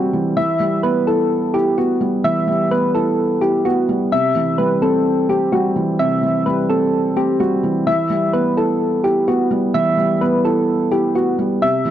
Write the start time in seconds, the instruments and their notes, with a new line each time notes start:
Already playing: felt piano C3 E3 G3 C4
0.13 felt piano E3
0.37 felt piano E3, synth keys E5
0.60 felt piano G3
0.83 felt piano B3, synth keys B4
1.07 felt piano E4, synth keys A4
1.54 felt piano E4, synth keys G4
1.77 felt piano B3, synth keys F#4
2.01 felt piano G3
2.24 felt piano E3, synth keys E5
2.48 felt piano G3
2.71 felt piano B3, synth keys B4
2.95 felt piano E4, synth keys A4
3.41 felt piano E4, synth keys G4
3.65 felt piano B3, synth keys F#4
3.89 felt piano G3
4.12 felt piano C3, synth keys E5
4.35 felt piano E3
4.58 felt piano G3, synth keys B4
4.82 felt piano C4, synth keys A4
5.29 felt piano C4, synth keys G4
5.52 felt piano G3, synth keys F#4
5.76 felt piano E3
5.99 felt piano C3, synth keys E5
6.23 felt piano E3
6.46 felt piano G3, synth keys B4
6.69 felt piano C4, synth keys A4
7.16 felt piano C4, synth keys G4
7.40 felt piano G3, synth keys F#4
7.63 felt piano E3
7.87 felt piano E3, synth keys E5
8.10 felt piano G3
8.33 felt piano B3, synth keys B4
8.57 felt piano E4, synth keys A4
9.04 felt piano E4, synth keys G4
9.28 felt piano B3, synth keys F#4
9.51 felt piano G3
9.74 felt piano E3, synth keys E5
9.98 felt piano G3
10.21 felt piano B3, synth keys B4
10.45 felt piano E4, synth keys A4
10.91 felt piano E4, synth keys G4
11.15 felt piano B3, synth keys F#4
11.39 felt piano G3
11.62 felt piano C3, synth keys E5
11.85 felt piano E3